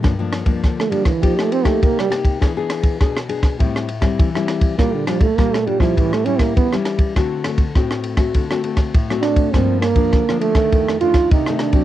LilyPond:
<<
  \new Staff \with { instrumentName = "Nylon-string guitar" } { \time 4/4 \key g \minor \tempo 4 = 101 << { <f bes d'>16 <f bes d'>8 <f bes d'>8. <f bes d'>16 r16 <bes ees' g'>8. <bes ees' g'>8. <bes ees' g'>8 | <b d' gis'>16 <b d' gis'>8. <b d' gis'>16 r16 <b d' gis'>8 <g c' e'>8 r16 <g c' e'>8 <g c' e'>8. | <g d' f'>8 <g d' f'>16 r16 <g d' f'>16 r16 <g d' f'>16 <g cis' e'>8. <g cis' e'>8. <g cis' e'>8. | <a c' fis'>8 <a c' fis'>16 r16 <a c' fis'>8. <a c' fis'>8 <a c' fis'>16 <a c' fis'>8 r16 <a c' fis'>8. |
<f bes d'>8 r16 <f bes d'>8 <f bes d'>8 <ees a d'>8. <ees a d'>8. <ees a d'>8 <fis c'>16 | } \\ { g,4 d4 f4 c4 | e4 b,4 a,4 e4 | bes,4 bes,4 a,4 e4 | d4 a,4 d4 a,4 |
g,4 d4 f,4 c4 | } >> }
  \new Staff \with { instrumentName = "Trombone" } { \time 4/4 \key g \minor r4 r16 a16 g16 e16 f16 a16 c'16 a16 bes16 g16 r8 | r1 | bes16 d16 f16 a16 bes16 a16 g16 f16 e16 a16 cis'16 bes16 b8 r8 | r2. r8 d'8 |
c'8 bes4 a4 f'8 ees'8 d'8 | }
  \new DrumStaff \with { instrumentName = "Drums" } \drummode { \time 4/4 <bd cymr ss>8 <cymr ss>16 <bd cymr>16 <bd cymr ss>16 ss16 cymr16 <bd cymr ss>16 <bd cymr>16 ss16 cymr16 <bd cymr ss>16 <bd cymr>16 ss16 <cymr ss>16 <bd cymr>16 | <bd cymr ss>8 <cymr ss>16 <bd cymr>16 <bd cymr ss>16 ss16 cymr16 <bd cymr ss>16 <bd cymr>16 ss16 cymr16 <bd cymr ss>16 <bd cymr>16 ss16 <cymr ss>16 <bd cymr>16 | <bd cymr ss>8 <cymr ss>16 <bd cymr>16 <bd cymr ss>16 ss16 cymr16 <bd cymr ss>16 <bd cymr>16 ss16 cymr16 <bd cymr ss>16 <bd cymr>16 ss16 <cymr ss>16 <bd cymr>16 | <bd cymr ss>8 <cymr ss>16 <bd cymr>16 <bd cymr ss>16 ss16 cymr16 <bd cymr ss>16 <bd cymr>16 ss16 cymr16 <bd cymr ss>16 <bd cymr>16 ss16 <cymr ss>16 <bd cymr>16 |
<bd cymr ss>8 <cymr ss>16 <bd cymr>16 <bd cymr ss>16 ss16 cymr16 <bd cymr ss>16 <bd cymr>16 ss16 cymr16 <bd cymr ss>16 <bd cymr>16 ss16 <cymr ss>16 <bd cymr>16 | }
>>